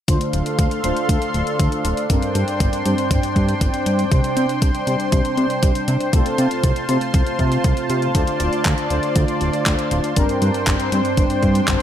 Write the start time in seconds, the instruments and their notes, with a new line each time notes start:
0.08 analog synth bass D2, analog polysynth D3 A3 D4 F4 C5, analog synth pad D4 A4 F5 C6, kick, closed hi-hat
0.21 closed hi-hat
0.33 analog synth bass D1, closed hi-hat
0.46 closed hi-hat
0.59 analog synth bass D2, kick, closed hi-hat
0.71 closed hi-hat
0.84 analog synth bass D1, analog polysynth D3 A3 D4 F4 C5, closed hi-hat
0.97 closed hi-hat
1.09 analog synth bass D2, kick, closed hi-hat
1.22 closed hi-hat
1.34 analog synth bass D1, closed hi-hat
1.47 closed hi-hat
1.60 analog synth bass D2, kick, closed hi-hat
1.72 closed hi-hat
1.85 analog synth bass D1, closed hi-hat
1.97 closed hi-hat
2.10 analog synth bass G1, analog polysynth G2 G3 C4 D4 A#4, analog synth pad C5 G5 C6, kick, closed hi-hat
2.22 closed hi-hat
2.35 analog synth bass G2, closed hi-hat
2.48 closed hi-hat
2.60 analog synth bass G1, kick, closed hi-hat
2.73 closed hi-hat
2.86 analog polysynth G2 G3 C4 D4 C5, analog synth bass G2, closed hi-hat
2.98 closed hi-hat
3.11 analog synth bass G1, kick, closed hi-hat
3.23 closed hi-hat
3.36 analog synth bass G2, kick, closed hi-hat
3.49 closed hi-hat
3.61 analog synth bass G1, kick, closed hi-hat
3.74 closed hi-hat
3.86 analog synth bass G2, closed hi-hat
3.99 closed hi-hat
4.12 analog synth bass C2, analog polysynth C3 G3 C4 D4 C5, analog synth pad C6, kick, closed hi-hat
4.24 closed hi-hat
4.37 analog synth bass C3, closed hi-hat
4.49 closed hi-hat
4.62 analog synth bass C2, kick, closed hi-hat
4.75 closed hi-hat
4.87 analog synth bass C3, analog polysynth C3 G3 C4 D4 C5, closed hi-hat
5.00 closed hi-hat
5.12 analog synth bass C2, kick, closed hi-hat
5.25 closed hi-hat
5.37 analog synth bass C3, closed hi-hat
5.50 closed hi-hat
5.63 analog synth bass C2, kick, closed hi-hat
5.75 closed hi-hat
5.88 analog synth bass C3, closed hi-hat
6.00 closed hi-hat
6.13 analog synth bass C2, analog polysynth C3 A3 C4 F4 A4, analog synth pad F4 A5 C6, kick, closed hi-hat
6.26 closed hi-hat
6.38 analog synth bass C3, closed hi-hat
6.51 closed hi-hat
6.64 analog synth bass C2, kick, closed hi-hat
6.76 closed hi-hat
6.89 analog synth bass C3, analog polysynth C3 A3 C4 F4 C5, closed hi-hat
7.01 closed hi-hat
7.14 analog synth bass C2, kick, closed hi-hat
7.27 closed hi-hat
7.39 analog synth bass C3, kick, closed hi-hat
7.52 closed hi-hat
7.64 analog synth bass C2, kick, closed hi-hat
7.77 closed hi-hat
7.90 analog synth bass C3, closed hi-hat
8.02 closed hi-hat
8.15 analog synth bass D2, analog polysynth D3 A3 D4 F4 C5, analog synth pad D5 C6, kick, closed hi-hat
8.27 closed hi-hat
8.40 analog synth bass D1, closed hi-hat
8.53 closed hi-hat
8.65 analog synth bass D2, kick, clap, closed hi-hat
8.78 closed hi-hat
8.90 analog synth bass D1, analog polysynth D3 A3 D4 F4 C5, closed hi-hat
9.03 closed hi-hat
9.16 analog synth bass D2, kick, closed hi-hat
9.28 closed hi-hat
9.41 analog synth bass D1, closed hi-hat
9.53 closed hi-hat
9.66 analog synth bass D2, kick, clap, closed hi-hat
9.79 closed hi-hat
9.91 analog synth bass D1, closed hi-hat
10.04 closed hi-hat
10.16 analog synth bass G1, analog polysynth G2 G3 C4 D4 A#4, analog synth pad D4 C5 G5, kick, closed hi-hat
10.29 closed hi-hat
10.42 analog synth bass G2, closed hi-hat
10.54 closed hi-hat
10.67 analog synth bass G1, kick, clap, closed hi-hat
10.80 closed hi-hat
10.92 analog polysynth G2 G3 C4 D4 C5, analog synth bass G2, closed hi-hat
11.05 closed hi-hat
11.17 analog synth bass G1, kick, closed hi-hat
11.30 closed hi-hat
11.43 analog synth bass G2, kick, closed hi-hat
11.55 closed hi-hat
11.68 analog synth bass G1, kick, clap, closed hi-hat